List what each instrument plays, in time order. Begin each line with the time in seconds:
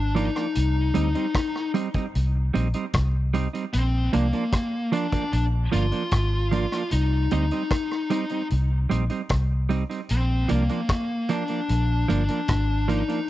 Already playing: fingered electric bass G#1, lead electric guitar D4
0.15 clean electric guitar F3 A#3 D4, lead electric guitar D#4, closed hi-hat
0.35 clean electric guitar F3 A#3 D4, cross-stick, closed hi-hat
0.55 fingered electric bass C2, closed hi-hat
0.94 fingered electric bass D2, clean electric guitar G3 C4 D#4, closed hi-hat
1.15 clean electric guitar G3 C4 D#4, closed hi-hat
1.35 kick, cross-stick, closed hi-hat
1.56 cross-stick
1.74 clean electric guitar G3 C4 D#4, closed hi-hat
1.94 clean electric guitar G3 C4 D#4, kick, closed hi-hat
2.15 fingered electric bass C2, closed hi-hat
2.54 fingered electric bass A#1, clean electric guitar G3 C4 D#4, closed hi-hat
2.74 clean electric guitar G3 C4 D#4, closed hi-hat
2.93 fingered electric bass C2, kick, cross-stick, closed hi-hat
3.34 clean electric guitar G3 C4 D#4, closed hi-hat
3.53 clean electric guitar G3 C4 D#4, closed hi-hat
3.73 fingered electric bass A#1, lead electric guitar C4, closed hi-hat
4.13 fingered electric bass C2, clean electric guitar F3 A#3 D4, lead electric guitar A#3, closed hi-hat
4.33 clean electric guitar F3 A#3 D4, closed hi-hat
4.53 kick, cross-stick, closed hi-hat
4.92 clean electric guitar F3 A#3 D4, lead electric guitar D4, closed hi-hat
5.12 clean electric guitar F3 A#3 D4, kick, closed hi-hat
5.33 fingered electric bass A#1, lead electric guitar D4, closed hi-hat
5.72 fingered electric bass G1, clean electric guitar F3 A#3 D4, lead electric guitar F4, closed hi-hat
5.92 clean electric guitar F3 A#3 D4, closed hi-hat
6.11 fingered electric bass G#1, kick, cross-stick, closed hi-hat
6.51 clean electric guitar F3 A#3 D4, closed hi-hat
6.72 clean electric guitar F3 A#3 D4, cross-stick, closed hi-hat
6.91 fingered electric bass C2, lead electric guitar D#4, closed hi-hat
7.31 fingered electric bass D2, clean electric guitar G3 C4 D#4, lead electric guitar D#4, closed hi-hat
7.51 clean electric guitar G3 C4 D#4, closed hi-hat
7.71 kick, cross-stick, closed hi-hat
7.91 cross-stick
8.10 clean electric guitar G3 C4 D#4, closed hi-hat
8.29 clean electric guitar G3 C4 D#4, closed hi-hat
8.50 fingered electric bass C2, closed hi-hat
8.90 fingered electric bass A#1, clean electric guitar G3 C4 D#4, closed hi-hat
9.10 clean electric guitar G3 C4 D#4, closed hi-hat
9.29 fingered electric bass C2, kick, cross-stick, closed hi-hat
9.69 clean electric guitar G3 C4 D#4, closed hi-hat
9.90 clean electric guitar G3 C4 D#4, closed hi-hat
10.09 fingered electric bass A#1, lead electric guitar C4, closed hi-hat
10.49 fingered electric bass C2, clean electric guitar F3 A#3 D4, lead electric guitar A#3, closed hi-hat
10.69 clean electric guitar F3 A#3 D4, closed hi-hat
10.89 kick, cross-stick, closed hi-hat
11.29 clean electric guitar F3 A#3 D4, lead electric guitar D4, closed hi-hat
11.48 clean electric guitar F3 A#3 D4, closed hi-hat
11.69 fingered electric bass A#1, closed hi-hat
12.08 fingered electric bass G1, clean electric guitar F3 A#3 D4, lead electric guitar D4, closed hi-hat
12.28 clean electric guitar F3 A#3 D4, closed hi-hat
12.48 fingered electric bass G#1, kick, cross-stick, closed hi-hat
12.88 clean electric guitar F3 A#3 D4, lead electric guitar D#4, closed hi-hat
13.08 clean electric guitar F3 A#3 D4, closed hi-hat